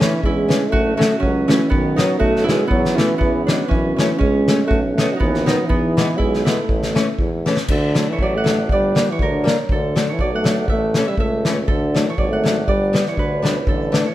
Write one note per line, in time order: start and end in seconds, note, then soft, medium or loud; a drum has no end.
0.00 0.11 E3 medium
0.00 0.22 E3 medium
0.00 2.59 A3 medium
0.00 0.11 A3 medium
0.00 0.11 C#4 medium
0.00 1.19 C#4 medium
0.00 snare medium
0.23 0.56 E2 medium
0.23 0.70 G#3 medium
0.23 2.02 E4 medium
0.23 kick medium
0.48 0.60 E3 medium
0.48 0.60 A3 soft
0.48 0.60 C#4 medium
0.48 snare medium
0.69 0.96 A3 loud
0.69 0.97 F#4 medium
0.73 1.05 F#1 medium
0.73 kick medium
0.97 1.09 F#3 medium
0.97 1.19 A3 medium
0.97 1.09 A3 medium
0.97 1.10 C#4 medium
0.97 2.19 F#4 medium
1.01 snare medium
1.19 1.55 C#2 medium
1.19 1.49 F#3 medium
1.19 1.48 C#4 medium
1.19 kick medium
1.48 1.70 E3 medium
1.48 1.59 F#3 medium
1.48 1.59 A3 medium
1.48 2.94 C#4 medium
1.48 1.60 C#4 medium
1.48 snare medium
1.69 2.04 B1 medium
1.69 1.99 D#3 medium
1.69 2.67 B3 medium
1.69 kick medium
1.96 2.08 D#3 medium
1.96 2.18 F#3 medium
1.96 2.09 F#3 medium
1.96 2.09 B3 medium
1.96 2.50 D#4 medium
1.96 snare medium
2.19 2.53 B1 medium
2.19 2.45 A3 loud
2.19 4.63 F#4 medium
2.19 kick medium
2.36 snare soft
2.44 2.69 G#3 medium
2.44 5.05 E4 medium
2.49 2.59 D#3 medium
2.49 2.59 F#3 medium
2.49 2.59 B3 medium
2.49 snare medium
2.68 3.03 E2 medium
2.68 2.97 F#3 medium
2.68 3.18 B3 medium
2.68 kick medium
2.85 snare soft
2.95 3.17 E3 medium
2.95 3.08 E3 medium
2.95 3.53 C#4 medium
2.95 snare medium
2.99 3.08 A3 medium
2.99 3.09 B3 medium
3.17 3.44 E3 medium
3.17 5.19 B3 medium
3.17 kick medium
3.21 3.54 E2 medium
3.45 3.58 E3 medium
3.45 3.68 F#3 medium
3.45 3.59 G#3 soft
3.45 3.74 D4 medium
3.45 snare medium
3.51 3.59 B3 medium
3.68 4.04 F#2 medium
3.68 3.94 E3 medium
3.68 3.96 C#4 medium
3.68 kick medium
3.95 4.20 E3 medium
3.95 4.08 F#3 medium
3.95 4.18 C#4 medium
3.95 snare medium
4.00 4.09 A3 medium
4.00 4.09 C#4 medium
4.18 4.53 C#2 medium
4.18 4.66 G#3 medium
4.18 7.08 C#4 medium
4.18 kick medium
4.48 4.58 F#3 medium
4.48 4.58 A3 soft
4.48 4.59 C#4 medium
4.48 snare medium
4.67 5.02 B1 medium
4.67 4.80 A3 medium
4.67 4.75 F#4 medium
4.67 kick medium
4.95 5.08 D#3 medium
4.95 5.08 F#3 medium
4.95 5.15 A3 medium
4.95 7.41 F#4 medium
4.95 snare medium
4.99 5.08 B3 medium
5.13 5.20 F#3 soft
5.13 5.46 D#4 soft
5.19 5.53 D#2 loud
5.19 5.47 E3 medium
5.19 5.69 B3 medium
5.19 kick medium
5.34 snare soft
5.45 5.57 D#3 medium
5.45 5.67 F#3 medium
5.45 5.57 F#3 medium
5.45 5.58 B3 medium
5.45 6.24 D#4 medium
5.45 snare medium
5.65 6.20 E3 medium
5.65 8.80 B3 medium
5.70 6.02 E2 medium
5.70 kick medium
5.97 6.07 E3 medium
5.97 6.07 G#3 medium
5.97 6.08 B3 medium
5.97 snare medium
6.18 6.52 B1 medium
6.18 6.46 G#3 medium
6.18 6.45 E4 medium
6.18 kick medium
6.34 snare soft
6.45 6.56 E3 medium
6.45 6.56 G#3 soft
6.45 7.45 A3 medium
6.45 6.57 B3 medium
6.45 9.06 E4 medium
6.45 snare medium
6.69 7.01 A1 medium
6.69 kick medium
6.83 snare soft
6.95 7.05 E3 medium
6.95 7.06 A3 medium
6.95 7.06 C#4 medium
6.95 snare medium
7.19 7.51 E2 medium
7.19 kick medium
7.46 7.56 E3 medium
7.46 7.56 A3 medium
7.46 7.57 C#4 medium
7.46 snare soft
7.57 snare medium
7.68 8.01 D2 medium
7.68 8.11 D3 medium
7.68 9.28 A4 medium
7.68 kick medium
7.68 crash medium
7.95 8.05 F#3 medium
7.95 8.06 A3 medium
7.95 8.06 D4 medium
7.95 snare medium
8.09 8.20 E3 medium
8.09 8.28 C#5 medium
8.19 8.72 A1 medium
8.19 8.37 F#3 medium
8.19 8.72 D5 medium
8.19 kick medium
8.36 8.71 A3 medium
8.36 9.98 F#5 medium
8.44 8.55 F#3 medium
8.44 8.56 A3 medium
8.44 8.56 D4 medium
8.44 snare medium
8.69 9.02 G1 medium
8.69 9.12 G3 medium
8.69 9.18 D5 medium
8.69 kick medium
8.95 9.06 G3 medium
8.95 9.06 A#3 medium
8.95 9.06 D4 medium
8.95 snare medium
9.10 9.20 E3 medium
9.10 10.09 C#5 medium
9.19 9.51 D2 medium
9.19 9.56 D3 medium
9.19 9.78 A#4 medium
9.19 kick medium
9.44 9.55 G3 medium
9.44 9.56 A#3 medium
9.44 9.56 D4 medium
9.44 snare medium
9.69 10.02 D2 medium
9.69 10.14 D3 medium
9.69 11.67 A4 medium
9.69 kick medium
9.96 10.06 F#3 medium
9.96 10.06 A3 medium
9.96 10.06 D4 medium
9.96 snare medium
10.09 10.23 E3 medium
10.09 10.26 C#5 medium
10.18 10.70 B1 medium
10.18 10.33 F#3 medium
10.18 12.05 D5 medium
10.18 kick soft
10.34 10.66 A3 medium
10.34 11.96 F#5 medium
10.44 10.55 F#3 medium
10.44 10.55 A3 medium
10.44 10.55 D4 medium
10.44 snare medium
10.68 11.00 A1 medium
10.68 11.09 A3 loud
10.68 11.07 E5 medium
10.68 kick medium
10.94 11.05 E3 medium
10.94 11.06 A3 medium
10.94 11.06 C#4 medium
10.94 snare medium
11.07 11.17 G3 medium
11.07 11.20 E5 medium
11.17 11.70 C#2 medium
11.17 11.53 A3 medium
11.17 12.92 E5 medium
11.17 kick medium
11.45 11.55 E3 medium
11.45 11.56 A3 soft
11.45 11.56 C#4 medium
11.45 snare medium
11.68 12.01 D2 medium
11.68 12.08 D3 medium
11.68 13.68 A4 medium
11.68 kick medium
11.94 12.05 F#3 medium
11.94 12.06 A3 soft
11.94 12.06 D4 medium
11.94 snare medium
12.07 12.18 E3 medium
12.07 12.24 C#5 medium
12.17 12.70 G#1 medium
12.17 12.29 F#3 medium
12.17 12.67 D5 medium
12.17 kick medium
12.30 12.64 A3 medium
12.30 13.93 F#5 medium
12.44 12.55 F#3 medium
12.44 12.55 A3 soft
12.44 12.55 D4 medium
12.44 snare medium
12.67 13.00 G1 medium
12.67 13.03 G3 medium
12.67 13.14 D5 medium
12.67 kick medium
12.93 13.04 G3 medium
12.93 13.04 B3 medium
12.93 13.05 D4 medium
12.93 snare medium
13.06 13.18 E3 medium
13.06 14.06 C#5 medium
13.06 snare soft
13.17 13.69 D2 medium
13.17 13.55 D3 medium
13.17 14.15 B4 medium
13.17 kick soft
13.42 13.54 G3 soft
13.42 13.54 B3 medium
13.42 13.54 D4 medium
13.42 snare medium
13.67 13.99 A1 loud
13.67 14.07 D3 medium
13.67 14.15 A4 medium
13.67 kick medium
13.92 14.03 E3 medium
13.92 14.03 A3 medium
13.92 14.04 D4 medium
13.92 snare medium
14.05 14.15 E3 medium
14.05 14.15 C#5 medium